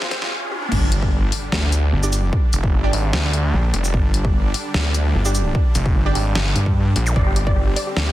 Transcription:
0.00 0.68 C3 medium
0.00 0.68 G#3 medium
0.00 0.68 F4 medium
0.00 0.08 F4 medium
0.00 0.68 G#4 medium
0.00 snare medium
0.00 riser medium
0.11 0.19 C5 loud
0.11 snare loud
0.11 closed hi-hat medium
0.22 0.28 F4 medium
0.22 snare loud
0.52 high tom medium
0.62 mid tom medium
0.72 1.31 G1 loud
0.72 8.12 D3 medium
0.72 8.12 G3 medium
0.72 7.12 D4 medium
0.72 kick loud
0.72 crash loud
0.72 impact medium
0.92 closed hi-hat medium
1.02 kick loud
1.32 open hi-hat loud
1.52 1.91 D2 loud
1.52 snare loud
1.72 closed hi-hat medium
1.72 shaker medium
1.93 2.31 G1 loud
2.03 2.22 D4 medium
2.03 2.22 G4 medium
2.03 2.22 D5 medium
2.03 shaker medium
2.13 closed hi-hat medium
2.13 shaker medium
2.33 kick loud
2.53 2.71 F1 loud
2.53 closed hi-hat medium
2.53 shaker medium
2.64 kick loud
2.73 2.92 G1 loud
2.84 3.02 D4 loud
2.84 3.02 G4 medium
2.84 3.02 D5 loud
2.93 3.12 G#1 loud
2.93 open hi-hat loud
3.13 3.52 D2 loud
3.13 snare loud
3.33 closed hi-hat medium
3.54 3.72 A#1 loud
3.74 3.92 F1 loud
3.74 closed hi-hat medium
3.84 shaker medium
3.94 4.53 G1 loud
3.94 kick loud
4.14 closed hi-hat medium
4.25 kick loud
4.54 open hi-hat medium
4.74 5.13 D2 loud
4.74 snare loud
4.94 closed hi-hat medium
4.94 shaker soft
5.15 5.53 G1 loud
5.25 5.44 D4 medium
5.25 5.44 G4 medium
5.25 5.44 D5 medium
5.25 shaker medium
5.35 closed hi-hat medium
5.35 shaker medium
5.55 kick loud
5.75 5.94 F1 loud
5.75 closed hi-hat medium
5.75 shaker medium
5.86 kick loud
5.95 6.14 G1 loud
6.06 6.24 D4 loud
6.06 6.24 G4 medium
6.06 6.24 D5 loud
6.15 6.34 G#1 loud
6.15 open hi-hat medium
6.35 6.54 G1 loud
6.35 snare loud
6.56 6.94 G2 loud
6.56 closed hi-hat medium
6.66 kick medium
6.96 7.14 A#1 medium
6.96 closed hi-hat medium
7.07 zap medium
7.07 shaker medium
7.16 7.75 G1 loud
7.16 8.12 C4 medium
7.16 7.23 D5 loud
7.16 kick loud
7.27 7.33 G4 medium
7.36 7.43 G4 medium
7.36 closed hi-hat medium
7.47 7.53 D5 medium
7.47 kick loud
7.56 7.64 G4 medium
7.67 7.73 G4 medium
7.76 7.84 D5 loud
7.76 open hi-hat medium
7.87 7.94 G4 medium
7.96 8.12 D2 loud
7.96 8.04 G4 medium
7.96 snare loud
8.07 8.12 G4 medium

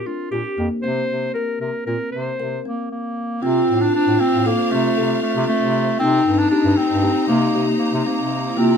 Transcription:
0.06 0.22 D4 medium
0.06 0.30 F4 medium
0.31 0.42 A#2 medium
0.31 0.68 G4 medium
0.31 0.47 G4 medium
0.58 0.68 F2 medium
0.58 0.73 A#3 medium
0.82 1.04 C3 medium
0.82 1.14 C4 medium
0.82 1.31 C5 medium
1.10 1.30 C3 medium
1.34 1.59 A#4 medium
1.34 1.66 A#4 medium
1.61 1.71 C3 medium
1.61 1.85 A#4 medium
1.86 1.97 A#2 medium
1.86 2.18 C4 medium
1.86 2.11 A#4 medium
2.12 2.33 C3 medium
2.12 2.60 C5 medium
2.39 2.59 C3 medium
2.39 2.55 A#4 medium
2.65 2.89 A#3 medium
2.65 2.80 C4 medium
2.92 3.44 A#3 medium
3.42 3.63 C3 medium
3.42 3.83 C4 medium
3.42 3.73 C4 medium
3.42 5.97 D4 medium
3.42 6.08 F4 loud
3.42 5.97 C5 medium
3.42 5.97 F5 medium
3.69 3.89 A2 medium
3.81 3.94 D4 medium
3.94 4.22 D4 loud
3.94 4.09 F4 medium
4.07 4.17 A2 medium
4.20 4.48 C4 loud
4.20 4.35 C4 medium
4.33 4.53 A2 medium
4.46 4.73 A#3 medium
4.46 4.61 A4 medium
4.71 4.91 C3 medium
4.71 5.22 A3 medium
4.71 4.87 C4 medium
4.97 5.17 C3 medium
4.97 5.28 A4 medium
5.23 5.47 A3 medium
5.36 5.46 C3 loud
5.47 5.96 A3 medium
5.47 5.79 C4 medium
5.62 5.92 C3 medium
5.99 6.21 C3 medium
5.99 6.40 C4 loud
5.99 6.30 C4 medium
5.99 8.27 D#4 loud
5.99 8.55 D#4 medium
5.99 8.55 C5 medium
5.99 8.77 A#5 medium
6.26 6.46 G2 medium
6.39 6.50 D4 medium
6.50 6.79 D4 medium
6.50 6.67 G4 medium
6.65 6.75 G2 medium
6.77 7.28 C4 medium
6.77 6.93 C4 medium
6.90 7.11 G2 medium
7.03 7.18 G4 medium
7.28 7.49 C3 loud
7.28 7.65 A#3 medium
7.28 7.44 A#3 medium
7.54 7.75 C3 medium
7.54 7.85 G4 medium
7.79 7.91 A#3 medium
7.93 8.03 C3 medium
8.06 8.59 A#3 medium
8.06 8.36 C4 medium
8.20 8.50 C3 medium
8.49 8.57 E4 medium
8.56 8.77 C3 medium
8.56 8.77 A#3 medium
8.56 8.77 C4 loud
8.56 8.77 F4 loud
8.56 8.77 G4 medium
8.56 8.77 D5 medium

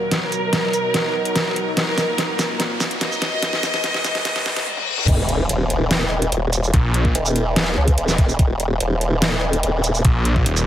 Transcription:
0.00 3.39 F#3 medium
0.00 1.69 A#4 loud
0.00 riser medium
0.11 1.75 B2 medium
0.11 4.63 D#4 medium
0.11 snare medium
0.11 closed hi-hat medium
0.32 closed hi-hat medium
0.32 shaker medium
0.53 snare medium
0.53 closed hi-hat medium
0.73 closed hi-hat medium
0.73 shaker medium
0.94 snare medium
0.94 closed hi-hat medium
1.25 closed hi-hat medium
1.36 snare medium
1.36 closed hi-hat medium
1.56 closed hi-hat medium
1.77 3.41 A#2 medium
1.77 3.41 A#3 medium
1.77 2.52 A#4 loud
1.77 snare medium
1.77 closed hi-hat medium
1.98 snare medium
1.98 closed hi-hat medium
1.98 shaker soft
2.18 snare medium
2.18 closed hi-hat medium
2.39 snare medium
2.39 closed hi-hat medium
2.39 shaker medium
2.60 2.92 A#4 medium
2.60 snare medium
2.60 closed hi-hat medium
2.80 snare medium
2.80 shaker medium
2.91 closed hi-hat medium
3.01 5.00 D#5 loud
3.01 snare medium
3.01 closed hi-hat medium
3.12 shaker medium
3.22 snare medium
3.22 closed hi-hat medium
3.42 4.65 C3 medium
3.42 4.65 G#3 medium
3.42 snare medium
3.42 closed hi-hat medium
3.53 snare medium
3.63 snare loud
3.63 closed hi-hat medium
3.63 shaker medium
3.74 snare medium
3.84 snare loud
3.84 closed hi-hat medium
3.94 snare medium
4.04 snare loud
4.04 closed hi-hat medium
4.04 shaker medium
4.15 snare medium
4.25 snare loud
4.25 closed hi-hat medium
4.25 reverse cymbal medium
4.36 snare medium
4.46 snare loud
4.57 snare medium
4.57 closed hi-hat medium
4.67 high tom medium
4.77 high tom medium
4.98 mid tom medium
5.08 5.48 D#1 loud
5.08 kick loud
5.08 closed hi-hat medium
5.08 crash loud
5.08 impact medium
5.29 closed hi-hat medium
5.49 6.31 D#1 loud
5.49 closed hi-hat medium
5.70 closed hi-hat medium
5.91 snare loud
5.91 closed hi-hat medium
6.22 closed hi-hat medium
6.32 6.72 D#1 loud
6.32 closed hi-hat medium
6.53 closed hi-hat medium
6.53 shaker medium
6.63 shaker medium
6.74 7.13 A#1 loud
6.74 kick loud
6.74 closed hi-hat medium
6.94 closed hi-hat medium
7.05 kick medium
7.15 7.75 D#1 loud
7.15 closed hi-hat medium
7.26 shaker medium
7.36 closed hi-hat medium
7.56 snare loud
7.56 closed hi-hat medium
7.77 7.96 C#2 loud
7.88 kick medium
7.88 closed hi-hat medium
7.98 8.37 D#1 loud
7.98 closed hi-hat medium
8.08 snare soft
8.08 shaker medium
8.18 kick loud
8.18 closed hi-hat medium
8.29 shaker medium
8.39 8.79 D#1 loud
8.39 kick loud
8.39 closed hi-hat medium
8.60 closed hi-hat medium
8.80 9.62 D#1 loud
8.80 closed hi-hat medium
9.01 closed hi-hat medium
9.22 snare loud
9.22 closed hi-hat medium
9.53 closed hi-hat medium
9.63 10.03 D#1 loud
9.63 closed hi-hat medium
9.84 closed hi-hat medium
9.84 shaker medium
9.95 shaker medium
10.05 10.44 A#1 loud
10.05 kick loud
10.05 closed hi-hat medium
10.25 closed hi-hat medium
10.36 kick medium
10.46 10.67 D#1 loud
10.46 closed hi-hat medium
10.57 shaker medium

